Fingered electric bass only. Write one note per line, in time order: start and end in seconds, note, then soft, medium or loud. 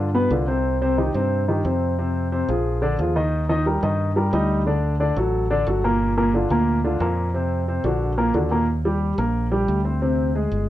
0.00 0.27 G2 medium
0.30 1.09 C2 medium
1.14 1.61 G2 medium
1.65 2.43 F2 medium
2.49 2.96 A#1 medium
2.99 3.77 D#2 medium
3.83 4.30 G2 medium
4.33 5.11 D2 medium
5.17 5.63 A1 medium
5.67 6.45 G1 medium
6.50 6.97 D2 medium
7.00 7.79 F2 medium
7.84 8.31 A#1 medium
8.34 9.12 D#2 medium
9.18 9.65 A#1 medium
9.68 10.46 D2 medium
10.52 10.69 G1 medium